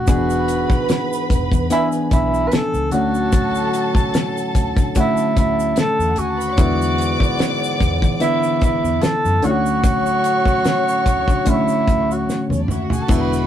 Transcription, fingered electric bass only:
0, 0, Header, 1, 3, 480
1, 0, Start_track
1, 0, Tempo, 814111
1, 46, Time_signature, 4, 2, 24, 8
1, 7941, End_track
2, 0, Start_track
2, 0, Title_t, "Fingered electric bass"
2, 0, Program_c, 0, 33
2, 46, Note_on_c, 0, 28, 93
2, 373, Note_off_c, 0, 28, 0
2, 769, Note_on_c, 0, 28, 83
2, 882, Note_off_c, 0, 28, 0
2, 894, Note_on_c, 0, 40, 95
2, 992, Note_off_c, 0, 40, 0
2, 1248, Note_on_c, 0, 35, 93
2, 1459, Note_off_c, 0, 35, 0
2, 1614, Note_on_c, 0, 37, 97
2, 1712, Note_off_c, 0, 37, 0
2, 1724, Note_on_c, 0, 38, 101
2, 2149, Note_off_c, 0, 38, 0
2, 2683, Note_on_c, 0, 38, 95
2, 2798, Note_off_c, 0, 38, 0
2, 2812, Note_on_c, 0, 50, 89
2, 2910, Note_off_c, 0, 50, 0
2, 3165, Note_on_c, 0, 38, 95
2, 3377, Note_off_c, 0, 38, 0
2, 3532, Note_on_c, 0, 40, 88
2, 3630, Note_off_c, 0, 40, 0
2, 3641, Note_on_c, 0, 39, 84
2, 3854, Note_off_c, 0, 39, 0
2, 3881, Note_on_c, 0, 40, 104
2, 4209, Note_off_c, 0, 40, 0
2, 4601, Note_on_c, 0, 40, 100
2, 4717, Note_off_c, 0, 40, 0
2, 4730, Note_on_c, 0, 52, 100
2, 4829, Note_off_c, 0, 52, 0
2, 5213, Note_on_c, 0, 40, 87
2, 5310, Note_off_c, 0, 40, 0
2, 5455, Note_on_c, 0, 42, 84
2, 5551, Note_off_c, 0, 42, 0
2, 5561, Note_on_c, 0, 38, 94
2, 5986, Note_off_c, 0, 38, 0
2, 6521, Note_on_c, 0, 38, 93
2, 6636, Note_off_c, 0, 38, 0
2, 6649, Note_on_c, 0, 50, 92
2, 6748, Note_off_c, 0, 50, 0
2, 7004, Note_on_c, 0, 38, 92
2, 7215, Note_off_c, 0, 38, 0
2, 7367, Note_on_c, 0, 40, 91
2, 7466, Note_off_c, 0, 40, 0
2, 7477, Note_on_c, 0, 39, 91
2, 7691, Note_off_c, 0, 39, 0
2, 7720, Note_on_c, 0, 28, 93
2, 7941, Note_off_c, 0, 28, 0
2, 7941, End_track
3, 0, Start_track
3, 0, Title_t, "Muted fingered electric bass strokes"
3, 2330, Note_on_c, 9, 29, 46
3, 2389, Note_off_c, 9, 29, 0
3, 4248, Note_on_c, 9, 29, 48
3, 4306, Note_off_c, 9, 29, 0
3, 5083, Note_on_c, 9, 29, 48
3, 5142, Note_off_c, 9, 29, 0
3, 5323, Note_on_c, 9, 29, 44
3, 5382, Note_off_c, 9, 29, 0
3, 6167, Note_on_c, 9, 29, 47
3, 6226, Note_off_c, 9, 29, 0
3, 7941, End_track
0, 0, End_of_file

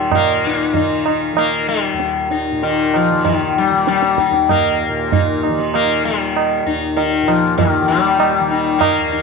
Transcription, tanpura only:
0, 0, Header, 1, 2, 480
1, 0, Start_track
1, 0, Tempo, 625652
1, 91, Time_signature, 7, 2, 24, 8
1, 3450, Tempo, 616650
1, 7128, End_track
2, 0, Start_track
2, 0, Title_t, "Tanpura"
2, 0, Program_c, 0, 104
2, 0, Note_on_c, 0, 39, 46
2, 0, Note_on_c, 0, 46, 55
2, 0, Note_on_c, 0, 51, 58
2, 100, Note_off_c, 0, 46, 0
2, 100, Note_on_c, 0, 46, 61
2, 559, Note_off_c, 0, 51, 0
2, 559, Note_on_c, 0, 51, 52
2, 1018, Note_off_c, 0, 51, 0
2, 1018, Note_on_c, 0, 51, 60
2, 1476, Note_off_c, 0, 39, 0
2, 1480, Note_on_c, 0, 39, 55
2, 1930, Note_off_c, 0, 46, 0
2, 1930, Note_on_c, 0, 46, 60
2, 2385, Note_off_c, 0, 51, 0
2, 2388, Note_on_c, 0, 51, 65
2, 2840, Note_off_c, 0, 51, 0
2, 2840, Note_on_c, 0, 51, 56
2, 3298, Note_off_c, 0, 39, 0
2, 3301, Note_on_c, 0, 39, 65
2, 3755, Note_off_c, 0, 46, 0
2, 3758, Note_on_c, 0, 46, 60
2, 4223, Note_off_c, 0, 51, 0
2, 4223, Note_on_c, 0, 51, 57
2, 4669, Note_off_c, 0, 51, 0
2, 4669, Note_on_c, 0, 51, 59
2, 5127, Note_off_c, 0, 39, 0
2, 5131, Note_on_c, 0, 39, 59
2, 5570, Note_off_c, 0, 46, 0
2, 5573, Note_on_c, 0, 46, 54
2, 6037, Note_off_c, 0, 51, 0
2, 6037, Note_on_c, 0, 51, 69
2, 6485, Note_off_c, 0, 51, 0
2, 6485, Note_on_c, 0, 51, 62
2, 6937, Note_off_c, 0, 39, 0
2, 6941, Note_on_c, 0, 39, 60
2, 7128, Note_off_c, 0, 39, 0
2, 7128, Note_off_c, 0, 46, 0
2, 7128, Note_off_c, 0, 51, 0
2, 7128, End_track
0, 0, End_of_file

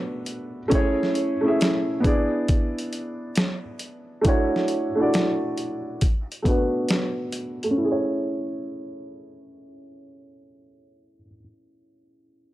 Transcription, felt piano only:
0, 0, Header, 1, 2, 480
1, 0, Start_track
1, 0, Key_signature, 3, "major"
1, 0, Tempo, 882353
1, 391, Time_signature, 4, 2, 24, 8
1, 6821, End_track
2, 0, Start_track
2, 0, Title_t, "Felt piano"
2, 0, Program_c, 0, 0
2, 0, Control_c, 0, 64, 127
2, 0, Note_on_c, 0, 57, 71
2, 0, Note_on_c, 0, 59, 67
2, 0, Note_on_c, 0, 62, 64
2, 0, Note_on_c, 0, 66, 61
2, 0, Note_on_c, 0, 71, 80
2, 314, Note_off_c, 0, 57, 0
2, 319, Note_off_c, 0, 59, 0
2, 324, Note_off_c, 0, 62, 0
2, 328, Note_off_c, 0, 66, 0
2, 333, Note_off_c, 0, 71, 0
2, 371, Note_on_c, 0, 57, 100
2, 379, Note_on_c, 0, 61, 103
2, 389, Note_on_c, 0, 64, 97
2, 398, Control_c, 0, 64, 0
2, 399, Note_on_c, 0, 68, 95
2, 408, Note_on_c, 0, 73, 118
2, 481, Control_c, 0, 64, 127
2, 714, Note_off_c, 0, 57, 0
2, 719, Note_off_c, 0, 61, 0
2, 723, Note_off_c, 0, 64, 0
2, 728, Note_off_c, 0, 68, 0
2, 733, Note_off_c, 0, 73, 0
2, 767, Note_on_c, 0, 57, 83
2, 776, Note_on_c, 0, 61, 69
2, 785, Note_on_c, 0, 64, 76
2, 796, Note_on_c, 0, 68, 73
2, 805, Note_on_c, 0, 76, 84
2, 1090, Note_on_c, 0, 59, 83
2, 1099, Note_on_c, 0, 62, 81
2, 1100, Note_off_c, 0, 57, 0
2, 1100, Note_off_c, 0, 64, 0
2, 1104, Note_off_c, 0, 61, 0
2, 1108, Note_on_c, 0, 64, 82
2, 1111, Note_off_c, 0, 68, 0
2, 1118, Control_c, 0, 64, 0
2, 1119, Note_off_c, 0, 76, 0
2, 1119, Note_on_c, 0, 68, 82
2, 1126, Note_on_c, 0, 74, 90
2, 1221, Control_c, 0, 64, 127
2, 1964, Note_off_c, 0, 59, 0
2, 1969, Note_off_c, 0, 62, 0
2, 1974, Note_off_c, 0, 64, 0
2, 1979, Note_off_c, 0, 68, 0
2, 1983, Note_off_c, 0, 74, 0
2, 2293, Note_on_c, 0, 57, 103
2, 2302, Note_on_c, 0, 62, 92
2, 2313, Note_on_c, 0, 64, 88
2, 2316, Control_c, 0, 64, 0
2, 2321, Note_on_c, 0, 66, 98
2, 2331, Note_on_c, 0, 73, 123
2, 2403, Control_c, 0, 64, 127
2, 2635, Note_off_c, 0, 57, 0
2, 2640, Note_off_c, 0, 62, 0
2, 2645, Note_off_c, 0, 64, 0
2, 2650, Note_off_c, 0, 66, 0
2, 2655, Note_off_c, 0, 73, 0
2, 2695, Note_on_c, 0, 57, 77
2, 2704, Note_on_c, 0, 62, 74
2, 2713, Note_on_c, 0, 64, 70
2, 2722, Note_on_c, 0, 66, 76
2, 2732, Note_on_c, 0, 74, 94
2, 3264, Note_off_c, 0, 57, 0
2, 3268, Note_off_c, 0, 62, 0
2, 3273, Note_off_c, 0, 64, 0
2, 3277, Note_off_c, 0, 66, 0
2, 3278, Control_c, 0, 64, 0
2, 3282, Note_off_c, 0, 74, 0
2, 3366, Control_c, 0, 64, 127
2, 3495, Note_on_c, 0, 57, 86
2, 3504, Note_on_c, 0, 59, 76
2, 3514, Note_on_c, 0, 62, 69
2, 3524, Note_on_c, 0, 66, 72
2, 3532, Note_on_c, 0, 71, 85
2, 4148, Note_off_c, 0, 57, 0
2, 4156, Note_on_c, 0, 57, 70
2, 4160, Note_off_c, 0, 59, 0
2, 4166, Note_off_c, 0, 62, 0
2, 4171, Note_off_c, 0, 66, 0
2, 4174, Note_off_c, 0, 71, 0
2, 4193, Note_on_c, 0, 61, 65
2, 4231, Note_on_c, 0, 64, 70
2, 4238, Control_c, 0, 64, 0
2, 4269, Note_on_c, 0, 68, 68
2, 4306, Note_on_c, 0, 73, 81
2, 4341, Control_c, 0, 64, 127
2, 6060, Note_off_c, 0, 57, 0
2, 6097, Note_off_c, 0, 61, 0
2, 6135, Note_off_c, 0, 64, 0
2, 6172, Note_off_c, 0, 68, 0
2, 6210, Note_off_c, 0, 73, 0
2, 6821, End_track
0, 0, End_of_file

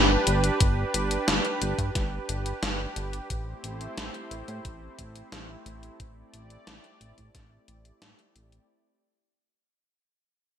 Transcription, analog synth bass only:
0, 0, Header, 1, 2, 480
1, 0, Start_track
1, 0, Tempo, 674157
1, 430, Time_signature, 4, 2, 24, 8
1, 7536, End_track
2, 0, Start_track
2, 0, Title_t, "Analog synth bass"
2, 0, Program_c, 0, 38
2, 0, Note_on_c, 0, 31, 85
2, 120, Note_off_c, 0, 31, 0
2, 191, Note_on_c, 0, 31, 101
2, 360, Note_off_c, 0, 31, 0
2, 431, Note_on_c, 0, 31, 98
2, 600, Note_off_c, 0, 31, 0
2, 671, Note_on_c, 0, 31, 83
2, 840, Note_off_c, 0, 31, 0
2, 911, Note_on_c, 0, 31, 103
2, 996, Note_off_c, 0, 31, 0
2, 1151, Note_on_c, 0, 31, 85
2, 1235, Note_off_c, 0, 31, 0
2, 1270, Note_on_c, 0, 43, 91
2, 1355, Note_off_c, 0, 43, 0
2, 1391, Note_on_c, 0, 31, 89
2, 1560, Note_off_c, 0, 31, 0
2, 1631, Note_on_c, 0, 31, 82
2, 1800, Note_off_c, 0, 31, 0
2, 1869, Note_on_c, 0, 31, 89
2, 2039, Note_off_c, 0, 31, 0
2, 2110, Note_on_c, 0, 31, 100
2, 2280, Note_off_c, 0, 31, 0
2, 2350, Note_on_c, 0, 33, 98
2, 2520, Note_off_c, 0, 33, 0
2, 2589, Note_on_c, 0, 33, 84
2, 2759, Note_off_c, 0, 33, 0
2, 2831, Note_on_c, 0, 33, 98
2, 2915, Note_off_c, 0, 33, 0
2, 3070, Note_on_c, 0, 33, 83
2, 3155, Note_off_c, 0, 33, 0
2, 3191, Note_on_c, 0, 45, 90
2, 3275, Note_off_c, 0, 45, 0
2, 3311, Note_on_c, 0, 33, 92
2, 3480, Note_off_c, 0, 33, 0
2, 3552, Note_on_c, 0, 33, 82
2, 3720, Note_off_c, 0, 33, 0
2, 3790, Note_on_c, 0, 33, 88
2, 3960, Note_off_c, 0, 33, 0
2, 4030, Note_on_c, 0, 33, 98
2, 4200, Note_off_c, 0, 33, 0
2, 4271, Note_on_c, 0, 33, 96
2, 4440, Note_off_c, 0, 33, 0
2, 4511, Note_on_c, 0, 33, 84
2, 4680, Note_off_c, 0, 33, 0
2, 4750, Note_on_c, 0, 33, 98
2, 4835, Note_off_c, 0, 33, 0
2, 4990, Note_on_c, 0, 33, 84
2, 5075, Note_off_c, 0, 33, 0
2, 5111, Note_on_c, 0, 45, 87
2, 5195, Note_off_c, 0, 45, 0
2, 5231, Note_on_c, 0, 33, 92
2, 5400, Note_off_c, 0, 33, 0
2, 5469, Note_on_c, 0, 33, 85
2, 5639, Note_off_c, 0, 33, 0
2, 5711, Note_on_c, 0, 33, 81
2, 5795, Note_off_c, 0, 33, 0
2, 5950, Note_on_c, 0, 33, 77
2, 6120, Note_off_c, 0, 33, 0
2, 7536, End_track
0, 0, End_of_file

